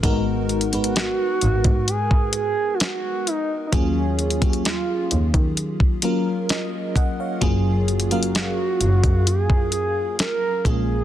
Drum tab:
HH |x---xxxxx---x-x-x---x---x---x---|x---xxxxx---x-x-x---x---x---x---|x---xxxxx---x-x-x---x---x---x---|
SD |--------o---------------o-------|--------o---------------o-------|--------o---------------o-------|
BD |o-------------o---o-------------|o-----o-------o---o---------o---|o-------------o---o---------o---|